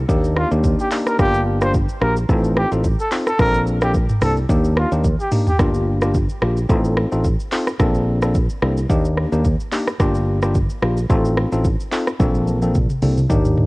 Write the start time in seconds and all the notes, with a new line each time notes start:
0.09 D#2 A#3 D4 D#4 G4, kick, shaker
0.24 shaker
0.36 F4, cross-stick
0.51 D#2 A#3 D4 D#4 G4, shaker
0.64 kick, shaker
0.79 G4, shaker
0.91 A#3 D4 D#4 G4, clap, open hi-hat, shaker
1.07 A#4, cross-stick, shaker
1.19 G1 A#3 D4 F4 G4, kick, cross-stick, shaker
1.34 shaker
1.61 A#3 D4 F4 G4 C5, cross-stick, shaker
1.74 kick, shaker
1.89 shaker
2.01 A#1 A#3 D4 F4 G4 A#4, cross-stick
2.16 shaker
2.29 A1 C4 D#4 F4 A4, kick, shaker
2.44 shaker
2.57 G4, cross-stick
2.72 A1 C4 D#4 F4 A4, shaker
2.84 kick, shaker
3.00 A4, shaker
3.12 C4 D#4 F4 A4, clap, open hi-hat, shaker
3.27 A4, cross-stick, shaker
3.39 A#1 A#3 C4 D4 A4 A#4, kick, cross-stick, shaker
3.54 shaker
3.67 shaker
3.81 A#3 C4 D4 G4 A4, cross-stick, shaker
3.94 kick, shaker
4.09 mid tom, shaker
4.21 C2 A#3 C4 D4 A4, cross-stick, open hi-hat, shaker
4.37 shaker
4.49 D#2 A#3 D4 D#4 G4, kick, shaker
4.64 shaker
4.77 F4, cross-stick
4.92 D#2 A#3 D4 D#4 G4, shaker
5.04 kick, high tom, shaker
5.20 G4, shaker
5.32 A#3 D4 D#4 G4, mid tom, open hi-hat, shaker
5.47 G4, floor tom, shaker
5.59 G1 A#3 D4 F4 G4, kick, cross-stick, shaker
5.74 shaker
6.01 A#3 D4 F4 G4, cross-stick, shaker
6.14 kick, shaker
6.29 shaker
6.42 A#1 A#3 D4 F4 G4, cross-stick
6.57 shaker
6.69 A1 C4 D#4 F4 A4, kick, shaker
6.85 shaker
6.97 cross-stick
7.12 A1 C4 D#4 F4 A4, shaker
7.24 kick, shaker
7.40 shaker
7.52 C4 D#4 F4 A4, clap, open hi-hat, shaker
7.67 cross-stick, shaker
7.79 A#1 A#3 C4 D4 A4, kick, cross-stick, shaker
7.95 shaker
8.22 A#3 C4 D4 A4, cross-stick, shaker
8.35 kick, shaker
8.50 shaker
8.62 C2 A#3 C4 D4 A4, cross-stick
8.77 shaker
8.90 D#2 A#3 D4 D#4 G4, kick, shaker
9.05 shaker
9.17 cross-stick
9.32 D#2 A#3 D4 D#4 G4, shaker
9.45 kick, shaker
9.60 shaker
9.72 A#3 D4 D#4 G4, clap, open hi-hat, shaker
9.87 cross-stick, shaker
9.99 G1 A#3 D4 F4 G4, kick, cross-stick, shaker
10.15 shaker
10.42 A#3 D4 F4 G4, cross-stick, shaker
10.55 kick, shaker
10.70 shaker
10.82 A#1 A#3 D4 F4 G4, cross-stick
10.97 shaker
11.10 A1 C4 D#4 F4 A4, kick, shaker
11.25 shaker
11.37 cross-stick
11.52 A1 C4 D#4 F4 A4, shaker
11.65 kick, shaker
11.80 shaker
11.92 C4 D#4 F4 A4, clap, open hi-hat, shaker
12.07 cross-stick, shaker
12.19 A#1 A#3 C4 D4 A4, kick, high tom, shaker
12.35 high tom, shaker
12.47 high tom, shaker
12.62 A#3 C4 D4 A4, high tom, shaker
12.75 kick, mid tom, shaker
12.90 mid tom, shaker
13.02 C2 A#3 C4 D4 A4, open hi-hat, mid tom, shaker
13.17 mid tom, shaker
13.30 D#2 A#3 D4 D#4 G4, kick, mid tom, shaker
13.45 mid tom, shaker
13.57 mid tom